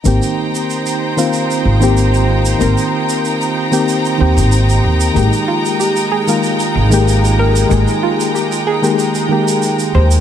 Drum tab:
SH |xx-xxx-xxx-xxx-x|xx-xxx-xxx-xxx-x|xx-xxx-xxx-xxx-x|xx-xxx-xxx-xxx-x|